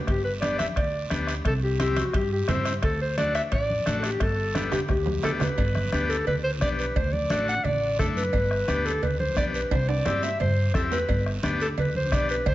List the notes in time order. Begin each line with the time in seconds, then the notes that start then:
0.07 G1 G4, bombo low, bombo rim, high conga, high timbale, long guiro
0.25 B4
0.41 B3 D4 G4 D5, bombo rim, high conga, high timbale, short guiro
0.59 E5, bombo rim, high conga, high timbale, short guiro
0.76 D2 D5, bombo low, bombo rim, high conga, high timbale, long guiro
1.10 D2 B3 D4 G4, bombo rim, high conga, high timbale, short guiro
1.27 bombo rim, high timbale, short guiro
1.45 C2 A4, bombo low, bombo rim, high timbale, long guiro
1.63 G4
1.79 C4 E4 G4, bombo rim, high conga, high timbale, short guiro
1.96 F#4, bombo rim, high conga, high timbale, short guiro
2.13 G2 G4, bombo low, bombo rim, high conga, high timbale, long guiro
2.33 G4
2.48 G2 C4 E4 G4 C5, bombo rim, high conga, low conga, high timbale, low timbale, short guiro
2.65 bombo rim, high timbale, short guiro
2.82 D2 A4, bombo low, bombo rim, high conga, high timbale, long guiro
3.01 C5
3.17 A3 D4 F#4 D5, bombo rim, high conga, high timbale, short guiro
3.35 E5, bombo rim, high timbale, short guiro
3.52 A1 D5, bombo low, bombo rim, high conga, high timbale, long guiro
3.70 high conga
3.86 A1 A3 D4 F#4, bombo rim, high conga, high timbale, short guiro
4.00 A4, bombo rim
4.04 G4, high timbale, short guiro
4.20 G1 A4, bombo low, bombo rim, high conga, high timbale, long guiro
4.55 B3 D4 G4, bombo rim, high conga, high timbale, short guiro
4.72 G4, bombo rim, low conga, high timbale, short guiro
4.89 D2 G4, bombo low, bombo rim, high conga, low timbale, long guiro
5.06 high conga, low timbale
5.23 D2 B3 D4 G4 A4, bombo rim, low conga, low timbale, short guiro
5.40 B4, bombo rim, low conga, low timbale, short guiro
5.58 G1, bombo low, cowbell, high conga, long guiro
5.75 bombo rim, high conga
5.92 D2 B3 D4 G4, bombo rim, high conga, short guiro
6.10 A4, short guiro
6.27 D2 B4, cowbell, high conga, low conga, long guiro
6.44 C5
6.61 B1 B3 D4 G4 D5, bombo low, bombo rim, high conga, short guiro
6.79 B4, short guiro
6.96 D2 C5, bombo low, cowbell, high conga, low conga, long guiro
7.13 D5, high conga
7.30 A1 A3 D4 F#4, bombo rim, high conga, short guiro
7.48 F#5, short guiro
7.64 A1 D5, cowbell, high conga, low conga, long guiro
7.99 F#2 A3 D4 E4 A4, bombo low, bombo rim, high conga, low conga, short guiro
8.17 B4, short guiro
8.33 G1, bombo low, cowbell, high conga, long guiro
8.51 bombo rim
8.68 D2 B3 D4 G4, bombo rim, high conga, short guiro
8.86 A4, short guiro
9.02 D2 B4, cowbell, high conga, low conga, long guiro
9.20 C5, high conga
9.36 B1 B3 D4 G4 D5, bombo low, bombo rim, high conga, low timbale, short guiro
9.54 B4, short guiro
9.71 C2 C5, bombo low, cowbell, high conga, high timbale, long guiro
9.89 D5, high timbale
10.05 G2 C4 E4 G4, bombo rim, high conga, low timbale, short guiro
10.23 E5, low timbale, short guiro
10.40 G2 C5, cowbell, high conga, low conga, long guiro
10.74 E2 C4 E4 G4 A4, bombo low, bombo rim, high conga, short guiro
10.92 B4, low timbale, short guiro
11.09 G1, bombo low, cowbell, high conga, long guiro
11.26 bombo rim
11.43 D2 B3 D4 G4, bombo rim, high conga, short guiro
11.60 A4, short guiro
11.78 D2 B4, cowbell, high conga, low conga, long guiro
11.95 C5, high conga
12.11 B1 B3 D4 G4 D5, bombo low, bombo rim, high conga, short guiro
12.29 B4, short guiro
12.46 D2 C5, bombo low, cowbell, high conga, low conga, long guiro